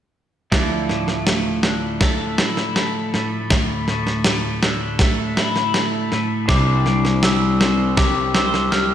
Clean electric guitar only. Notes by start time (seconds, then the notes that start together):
0.52 D2
0.90 A2
1.27 A2
1.64 D3
2.02 A3
2.38 E4
2.76 A3
3.14 A2
3.51 D2
3.89 A2
4.26 A2
4.63 D3
5.00 A3
5.38 E4
5.75 A3
6.12 A2
6.50 C3
6.86 G3
7.23 G3
7.60 C4
7.97 G4
8.35 C5
8.72 G4